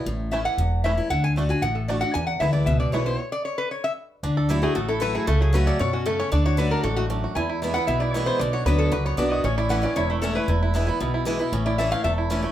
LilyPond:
<<
  \new Staff \with { instrumentName = "Resonator guitar played with a steel bar" } { \time 4/4 \key a \major \tempo 4 = 230 r4 e''8 fis''4. e''4 | fis''8 gis''8 r8 gis''8 fis''8 a'8 d''8 fis''8 | gis''8 fis''8 e''8 d''8 e''8 d''8 cis''8 c''8 | cis''8 d''8 cis''8 b'8 cis''8 e''8 r4 |
r4. gis'8 fis'8 a'8 b'8 gis'8 | a'8 gis'8 b'8 d''8 cis''8 fis'8 a'8 cis''8 | d''8 cis''8 b'8 bes'8 a'8 fis'8 r4 | gis''4. fis''8 e''8 d''8 cis''8 c''8 |
d''8 cis''8 b'8 a'8 b'8 cis''8 d''8 dis''8 | cis''8 d''8 fis''8 d''8 cis''8 e'8 a'8 b'8~ | b'2 r2 | r8 d''8 e''8 f''8 e''8 r4. | }
  \new Staff \with { instrumentName = "Five-string banjo" } { \time 4/4 \key a \major r4 <a cis' e'>8 r4. <a cis' e'>8 r8 | r4 <a d' fis'>8 r4. <a d' fis'>8 r8 | r4 <b e'>8 r4. <b e'>8 r8 | r1 |
d'8 a'8 e'8 a8 a'8 e'8 a'8 e'8 | a8 fis8 fis'8 a'8 fis'8 cis'8 a8 cis'8 | d'8 fis'8 fis8 d'8 fis'8 a8 d'8 fis'8 | e'8 e'8 e'8 b8 e'8 e'8 e'8 b8 |
d'8 fis'8 fis8 d'8 fis'8 b8 d'8 fis'8 | cis'8 e'8 e8 cis'8 e'8 a8 cis'8 e'8 | e'8 e'8 e'8 b8 e'8 e'8 e'8 e'8 | cis'8 e'8 a'8 a8 a'8 e'8 cis'8 a8 | }
  \new Staff \with { instrumentName = "Steel-string acoustic guitar" } { \time 4/4 \key a \major << { r4 <e a cis' e'>4 r4 <e a cis' e'>8 <cis' e'>8 | r4 <d a d' fis'>8 <d' fis'>8 r4 <d a d' fis'>8 <d' fis'>8 | r4 <e gis b e'>4 r4 <e gis b e'>8 <b e'>8 | r1 |
r4 <fis a e' fis'>8 <e' fis'>8 r4 <fis a e' fis'>4 | r4 <fis a cis' fis'>4 r2 | r4 <d a d' fis'>4 r2 | r4 <e gis b e'>8 <b e'>8 r4 <e gis b e'>4 |
r4 <fis b d' fis'>4 r4 <fis b d' fis'>4 | r4 <e a cis' e'>8 <cis' e'>8 r4 <e a cis' e'>4 | r4 <e gis b e'>8 <b e'>8 r4 <e gis b e'>8 <b e'>8 | r4 <e a cis' e'>8 <cis' e'>8 r4 <e a cis' e'>8 <cis' e'>8 | } \\ { a,2 e,2 | d2 a,2 | e,2 b,2 | r1 |
d2 a,2 | cis2 b,4 cis4 | d2 gis,4 fis,4 | e,2 b,2 |
b,2 fis,2 | a,2 e,2 | e,2 b,2 | a,2 e,2 | } >> }
  \new Staff \with { instrumentName = "Upright bass" } { \clef bass \time 4/4 \key a \major a,,2 e,,2 | d,2 a,,2 | e,4 d,4 cis,4 b,,4 | r1 |
d,2 a,,2 | cis,2 fis,2 | d,2 a,,2 | e,2 b,,2 |
b,,4 d,4 cis,4 b,,4 | a,,2 e,,2 | e,,2 b,,2 | a,,2 e,,2 | }
>>